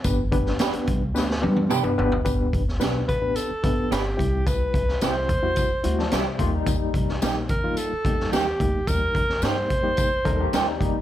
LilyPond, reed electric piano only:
\new Staff \with { instrumentName = "Reed electric piano" } { \time 4/4 \key g \major \tempo 4 = 109 << { r1 | r1 | r1 | r1 |
r2 r8 bes''8 g''4 | } \\ { <b d' g' b'>16 r16 <b d' g' b'>8 r16 <b d' g' b'>8 r16 <b d' g' b'>16 r16 <b d' g' b'>8 r16 <b d' g' b'>16 <b d' g' b'>8 | <b d' g' b'>8. r16 <b d' g' b'>8 r16 <b d' g' b'>8 r16 <b d' g' b'>8. r16 <g c' e' g'>8~ | <g c' e' g'>8. r16 <g c' e' g'>8 r16 <g c' e' fis'>8 r16 <g c' e' fis'>8. r16 <g bes ees' g'>8~ | <g bes ees' g'>8. r16 <g bes ees' g'>8 r16 <g bes ees' f'>8 r16 <g bes ees' g'>8. r16 <g bes ees' g'>16 r16 |
<g bes ees' g'>8. r16 <g bes ees' g'>8 r16 <g bes ees' g'>8 r16 <g bes ees' a'>8. r16 <g bes ees' g'>16 r16 | } >> }